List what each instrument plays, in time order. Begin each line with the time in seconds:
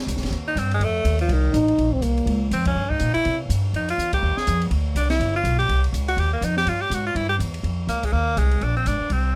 0.07 upright bass C2, hi-hat pedal, ride
0.16 upright bass G#1, snare
0.23 upright bass G1, snare, ride
0.31 upright bass D#2, ride
0.48 tenor saxophone D#4
0.55 upright bass G2, tenor saxophone C4, hi-hat pedal, ride
0.71 tenor saxophone G#3, ride
0.80 upright bass F2, ride
0.84 tenor saxophone A3
1.05 upright bass D#2, hi-hat pedal, ride
1.19 tenor saxophone F3, ride
1.29 upright bass C2, tenor saxophone D#3, ride
1.53 upright bass A1, trombone D#4, hi-hat pedal, ride
1.68 ride
1.78 upright bass A#1, ride
1.93 trombone C4, kick
2.01 upright bass C2, trombone A#3, hi-hat pedal, ride
2.18 ride
2.26 upright bass C#2, ride
2.51 upright bass F2, tenor saxophone C4, hi-hat pedal, ride
2.65 tenor saxophone C#4, kick, ride
2.75 upright bass G2
2.90 tenor saxophone D#4, kick
3.00 upright bass A#2, hi-hat pedal, ride
3.14 tenor saxophone E4, muted upright bass stroke, ride
3.25 upright bass C3, ride
3.49 upright bass G2, hi-hat pedal, ride
3.73 upright bass F2, tenor saxophone D#4, ride
3.89 tenor saxophone F4, ride
3.98 upright bass E2, hi-hat pedal
4.13 tenor saxophone G4, kick, ride
4.23 upright bass D#2
4.37 tenor saxophone G#4, muted upright bass stroke, snare
4.47 upright bass F2, hi-hat pedal, ride
4.61 ride
4.71 upright bass D2, ride
4.95 upright bass C2, tenor saxophone D4, hi-hat pedal, ride
5.10 tenor saxophone E4, snare, ride
5.20 upright bass G1, ride
5.36 tenor saxophone F4
5.44 upright bass B1, hi-hat pedal, ride
5.59 tenor saxophone G4, ride
5.69 upright bass C2, ride
5.84 ride
5.93 upright bass C#2, hi-hat pedal, ride
6.08 tenor saxophone F#4, ride
6.17 upright bass D#2, tenor saxophone G4, ride
6.33 tenor saxophone A#3
6.41 upright bass F2, tenor saxophone D#4, hi-hat pedal, ride
6.57 tenor saxophone G4, snare
6.66 upright bass G2, tenor saxophone F4, ride
6.81 tenor saxophone G4
6.90 upright bass G#2, tenor saxophone F#4, hi-hat pedal, ride
7.06 tenor saxophone F4
7.15 upright bass G2, tenor saxophone E4, ride
7.29 tenor saxophone G4
7.39 upright bass E2, hi-hat pedal, ride
7.54 ride
7.63 upright bass F2, ride
7.87 upright bass C#2, tenor saxophone A#3, hi-hat pedal, ride
8.03 tenor saxophone G#3, kick, ride
8.12 upright bass D#2, tenor saxophone A#3
8.37 upright bass C2, tenor saxophone G#3, hi-hat pedal, ride
8.51 ride
8.61 upright bass A#1, tenor saxophone D4, ride
8.77 tenor saxophone C4
8.85 upright bass G#1, tenor saxophone D4, hi-hat pedal, ride
9.00 muted upright bass stroke
9.10 upright bass C2, tenor saxophone C4, ride